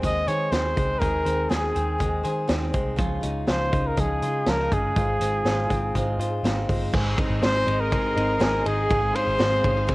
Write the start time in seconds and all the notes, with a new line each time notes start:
Already playing: D#3 C4 G#4
0.02 D#2 G#3 D#4 G#4 C5 D#5, kick, closed hi-hat
0.26 D#3 D#4 G#4 C5 C#5, closed hi-hat
0.51 D#2 D#3 G#3 C4 D#4 G#4 C5, snare, closed hi-hat
0.75 C#2 G#3 D#4 G#4 C5, kick, closed hi-hat
0.99 D#2 D#3 G#3 D#4 G#4 A#4 C5, kick, closed hi-hat
1.25 D#2 C4 D#4 G#4 C5, closed hi-hat
1.49 D#2 D#3 G#3 D#4 G#4 C5, snare, closed hi-hat
1.74 D#2 C4 D#4 G#4 C5, closed hi-hat
1.98 D#2 G#3 D#4 G#4 C5, kick, closed hi-hat
2.23 D#3 D#4 G#4 C5, closed hi-hat
2.47 D#2 D#3 G#3 C4 D#4 G#4 C5, snare, closed hi-hat
2.73 C2 G#3 D#4 G#4 C5, kick, closed hi-hat
2.96 C#2 C#3 F3 C#4 D#4 F4 G#4, kick, closed hi-hat
3.21 C#2 C#4 D#4 G#4, closed hi-hat
3.47 C#2 C#3 F3 C#4 D#4 F4 G#4 C5, snare, closed hi-hat
3.71 C#2 C#4 D#4 G#4, kick, closed hi-hat
3.87 A#4
3.97 C#2 F3 G#3 C#4 D#4 G#4, kick, closed hi-hat
4.22 C#3 C#4 D#4 F4 G#4, closed hi-hat
4.46 C#2 C#3 F3 C#4 D#4 G#4 A#4, snare, closed hi-hat
4.61 D#4
4.71 G1 G#3 C#4 D#4 G#4, kick, closed hi-hat
4.96 G#1 G#2 G#3 D#4 F4 C5, kick, closed hi-hat
5.21 G#1 C4 D#4 F4 C5, closed hi-hat
5.44 G#1 G#3 D#4 F4 C5, snare, closed hi-hat
5.70 G#1 C4 D#4 F4 C5, kick, closed hi-hat
5.95 G#1 G#3 D#4 F4 C5, kick, closed hi-hat
6.18 G#2 D#4 F4 C5, closed hi-hat
6.43 G#1 G#3 C4 D#4 F4 C5, snare, closed hi-hat
6.69 G1 G#3 D#4 F4 C5, kick, open hi-hat
6.93 G#1 G#2 G#3 C4 D#4 G#4 D#5 C6, kick, crash
7.18 C4 D#4 G#4, kick, ride
7.30 G#1
7.42 G#3 C4 D#4 G#4 C5, snare, ride
7.66 G#1 C4 D#4 G#4, ride
7.80 A#4
7.91 G#3 C4 D#4 G#4, kick, ride
8.15 G#1 C4 D#4 G#4, ride
8.39 G#1 G#3 C4 D#4 G#4, snare, ride
8.65 G#1 C4 D#4 G#4, ride
8.89 G#1 G#2 G#3 C4 D#4 G#4 F5, kick, ride
9.13 C4 C#4 D#4 G#4 C5, ride
9.27 G#1 D#4
9.38 G#1 G#3 C4 D#4 G#4, snare, ride
9.63 G#1 C4 C#4 D#4 G#4, kick, ride
9.77 D#4
9.87 G#3 C4 D#4 G#4, kick, ride